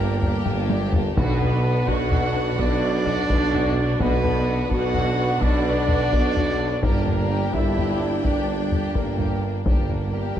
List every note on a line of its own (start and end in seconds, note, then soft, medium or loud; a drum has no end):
0.00 0.38 G1 medium
0.00 0.39 G2 medium
0.00 0.23 A#3 medium
0.00 0.91 A#3 medium
0.00 0.23 D4 medium
0.00 1.13 D4 medium
0.00 0.23 G4 medium
0.00 0.94 A#4 loud
0.00 1.13 A#4 medium
0.00 1.13 D5 medium
0.00 1.14 G5 medium
0.20 0.32 G3 medium
0.20 0.32 A#3 medium
0.20 0.44 D4 medium
0.20 0.45 G4 medium
0.20 taiko low medium
0.45 1.08 G1 medium
0.45 1.09 G1 medium
0.45 1.09 G2 loud
0.45 0.70 A#3 medium
0.45 0.71 D4 medium
0.45 0.70 G4 medium
0.45 taiko low-mid loud
0.70 0.95 D4 medium
0.70 0.94 G4 medium
0.70 taiko high medium
0.92 1.03 G3 medium
0.92 1.17 A#3 medium
0.92 1.03 A#3 medium
0.92 1.17 D4 medium
0.92 1.18 G4 medium
0.92 taiko low loud
1.16 1.79 B1 loud
1.16 1.80 B1 loud
1.16 1.79 B2 loud
1.16 1.84 B2 loud
1.16 3.96 F#3 medium
1.16 1.84 B3 loud
1.16 3.97 B3 medium
1.16 1.85 B3 loud
1.16 1.40 D4 medium
1.16 3.97 D4 loud
1.16 1.39 F#4 medium
1.16 3.99 B4 loud
1.16 1.90 B4 loud
1.16 3.96 D5 loud
1.16 3.99 F#5 loud
1.16 taiko loud
1.41 1.65 B3 medium
1.41 1.65 D4 medium
1.41 1.65 F#4 medium
1.41 taiko low medium
1.64 1.88 D4 medium
1.64 1.88 F#4 medium
1.86 2.50 B1 medium
1.86 2.50 B1 loud
1.86 2.50 B2 medium
1.86 2.11 B3 medium
1.86 2.11 D4 medium
1.86 2.58 F#4 loud
1.86 2.11 F#4 medium
1.86 2.59 F#4 loud
1.86 2.61 F#5 loud
1.86 taiko medium
2.10 2.33 D4 medium
2.10 2.33 F#4 medium
2.10 taiko low medium
2.33 2.59 B3 medium
2.33 2.58 D4 medium
2.33 2.59 F#4 medium
2.57 3.21 B1 medium
2.57 3.21 B1 loud
2.57 3.21 B2 medium
2.57 2.82 D4 medium
2.57 4.01 D4 loud
2.57 3.98 D4 loud
2.57 2.82 F#4 medium
2.57 4.00 D5 loud
2.57 taiko medium
2.81 3.06 B3 medium
2.81 3.05 D4 medium
2.81 3.06 F#4 medium
3.06 3.28 D4 medium
3.06 3.28 F#4 medium
3.06 taiko low medium
3.28 3.82 B1 loud
3.28 3.91 B1 loud
3.28 3.92 B2 medium
3.28 3.53 B3 medium
3.28 3.52 D4 medium
3.28 3.53 F#4 medium
3.28 taiko medium
3.53 3.77 D4 medium
3.53 3.77 F#4 medium
3.53 taiko low medium
3.76 4.01 B3 medium
3.76 4.00 D4 medium
3.76 4.01 F#4 medium
3.99 4.62 B1 loud
3.99 4.63 B1 loud
3.99 4.62 B2 loud
3.99 6.80 F#3 loud
3.99 4.70 B3 loud
3.99 6.80 B3 medium
3.99 6.80 D4 loud
3.99 4.23 D4 medium
3.99 4.22 F#4 medium
3.99 4.70 B4 loud
3.99 6.80 B4 loud
3.99 6.80 D5 loud
3.99 6.79 F#5 medium
3.99 taiko loud
4.21 4.46 D4 medium
4.21 4.48 F#4 medium
4.21 taiko low medium
4.26 4.48 B3 medium
4.45 4.71 D4 medium
4.45 4.70 F#4 medium
4.69 5.33 B1 medium
4.69 5.34 B2 medium
4.69 4.94 D4 medium
4.69 5.42 F#4 loud
4.69 5.43 F#5 loud
4.69 taiko medium
4.73 4.96 B3 medium
4.73 4.96 F#4 medium
4.93 5.17 D4 medium
4.93 5.16 F#4 medium
4.93 taiko low medium
5.17 5.42 B3 medium
5.17 5.41 D4 medium
5.17 5.41 F#4 medium
5.41 6.04 B1 medium
5.41 6.05 B1 medium
5.41 6.04 B2 medium
5.41 5.66 D4 medium
5.41 6.83 D4 loud
5.41 6.84 D4 loud
5.41 5.65 F#4 medium
5.41 6.84 D5 loud
5.41 taiko medium
5.64 5.89 B3 medium
5.64 5.88 D4 medium
5.64 5.89 F#4 medium
5.88 6.12 D4 medium
5.88 6.11 F#4 medium
5.88 taiko low medium
6.12 6.75 B1 medium
6.12 6.75 B2 medium
6.12 6.37 B3 medium
6.12 6.36 D4 medium
6.12 6.37 F#4 medium
6.12 taiko medium
6.36 6.61 D4 medium
6.36 6.60 F#4 medium
6.36 taiko low medium
6.60 6.84 B3 medium
6.60 6.83 D4 medium
6.60 6.84 F#4 medium
6.82 7.45 G1 medium
6.82 7.46 G2 medium
6.82 9.47 G3 medium
6.82 7.52 A#3 medium
6.82 7.54 A#3 medium
6.82 7.06 A#3 medium
6.82 9.61 D4 loud
6.82 9.47 D4 medium
6.82 7.06 D4 medium
6.82 9.64 G4 medium
6.82 7.05 G4 medium
6.82 7.55 A#4 loud
6.82 9.62 D5 medium
6.82 9.65 G5 medium
6.82 taiko loud
7.06 7.31 A#3 medium
7.06 7.30 D4 medium
7.06 taiko low medium
7.31 7.53 A#3 medium
7.31 7.53 D4 medium
7.31 7.54 G4 medium
7.53 8.16 G1 medium
7.53 8.16 G2 medium
7.53 7.78 A#3 medium
7.53 7.78 D4 medium
7.53 8.24 E4 medium
7.53 8.23 E4 medium
7.53 8.00 E5 loud
7.53 taiko medium
7.76 8.00 A#3 medium
7.76 8.00 D4 medium
7.76 7.99 G4 medium
7.76 taiko low medium
8.00 8.23 A#3 medium
8.00 8.24 D4 medium
8.23 8.86 G1 medium
8.23 8.87 G1 medium
8.23 8.87 G2 medium
8.23 8.48 A#3 medium
8.23 8.95 D4 medium
8.23 8.48 D4 medium
8.23 8.48 G4 medium
8.23 8.96 D5 medium
8.23 taiko medium
8.27 8.97 D4 medium
8.48 8.71 A#3 medium
8.48 8.72 D4 medium
8.48 8.70 D4 medium
8.72 8.93 A#3 medium
8.72 8.94 D4 medium
8.72 8.94 G4 medium
8.72 taiko low medium
8.94 9.57 G1 medium
8.94 9.58 G1 medium
8.94 9.58 G2 medium
8.94 9.64 A#3 medium
8.94 9.19 A#3 medium
8.94 9.50 A#3 medium
8.94 9.18 D4 medium
8.94 9.19 D4 medium
8.94 9.65 A#4 medium
8.94 taiko medium
9.19 9.42 A#3 medium
9.19 9.41 D4 soft
9.19 9.43 G4 soft
9.19 taiko low medium
9.42 9.65 A#3 medium
9.42 9.65 D4 medium
9.42 9.66 D4 medium
9.64 10.28 G1 medium
9.64 10.29 G2 medium
9.64 10.40 G3 medium
9.64 10.40 A#3 medium
9.64 9.88 A#3 medium
9.64 10.40 A#3 medium
9.64 10.40 D4 medium
9.64 9.88 D4 medium
9.64 10.40 G4 medium
9.64 9.89 G4 medium
9.64 10.40 A#4 medium
9.64 10.40 D5 medium
9.64 10.40 G5 medium
9.64 taiko medium
9.64 cymbal swell soft
9.89 10.12 A#3 medium
9.89 10.14 D4 soft
9.89 10.13 D4 soft
9.89 taiko low medium
10.13 10.34 A#3 soft
10.13 10.35 D4 soft
10.13 10.37 G4 medium
10.35 10.40 G1 medium
10.35 10.40 A#3 medium
10.35 10.40 D4 medium